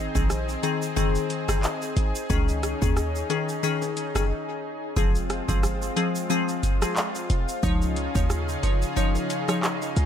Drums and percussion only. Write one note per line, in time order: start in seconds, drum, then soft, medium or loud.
0.15 kick loud
0.15 shaker medium
0.30 cross-stick medium
0.30 shaker medium
0.49 shaker medium
0.49 shaker soft
0.63 closed hi-hat medium
0.63 shaker medium
0.63 shaker soft
0.82 shaker medium
0.97 kick medium
0.97 shaker medium
1.15 shaker soft
1.15 shaker medium
1.30 closed hi-hat medium
1.30 shaker medium
1.48 kick loud
1.48 cross-stick loud
1.48 shaker medium
1.63 clap medium
1.63 shaker medium
1.82 shaker medium
1.97 closed hi-hat medium
1.97 shaker medium
2.15 shaker medium
2.30 kick loud
2.30 shaker medium
2.48 shaker medium
2.63 cross-stick medium
2.63 closed hi-hat medium
2.63 shaker medium
2.82 kick loud
2.82 shaker medium
2.97 cross-stick medium
2.97 shaker medium
3.15 shaker medium
3.30 closed hi-hat medium
3.30 high timbale medium
3.30 shaker medium
3.49 shaker medium
3.63 shaker medium
3.82 high timbale medium
3.82 shaker soft
3.82 shaker medium
3.97 closed hi-hat medium
3.97 shaker medium
4.15 kick loud
4.15 cross-stick loud
4.15 shaker medium
4.97 kick loud
4.97 shaker medium
5.15 shaker medium
5.30 cross-stick medium
5.30 closed hi-hat medium
5.30 shaker soft
5.49 kick loud
5.49 shaker medium
5.63 cross-stick medium
5.63 shaker medium
5.82 shaker medium
5.97 closed hi-hat medium
5.97 shaker medium
6.15 shaker medium
6.30 shaker medium
6.49 shaker soft
6.49 shaker medium
6.63 kick medium
6.63 closed hi-hat medium
6.63 shaker medium
6.82 cross-stick loud
6.82 shaker medium
6.96 clap medium
6.96 shaker medium
7.15 shaker medium
7.30 closed hi-hat medium
7.30 shaker medium
7.49 shaker medium
7.63 kick loud
7.63 shaker medium
7.82 shaker medium
7.96 closed hi-hat medium
7.96 shaker medium
8.15 kick loud
8.15 shaker medium
8.30 cross-stick medium
8.30 shaker medium
8.49 shaker medium
8.63 kick loud
8.63 closed hi-hat medium
8.63 high timbale medium
8.63 shaker medium
8.82 shaker medium
8.97 kick medium
8.97 shaker medium
9.15 high timbale medium
9.15 shaker soft
9.15 shaker medium
9.30 closed hi-hat medium
9.30 shaker medium
9.49 cross-stick loud
9.49 shaker medium
9.63 cross-stick medium
9.63 clap medium
9.63 shaker medium
9.82 shaker medium
9.96 closed hi-hat medium
9.96 shaker medium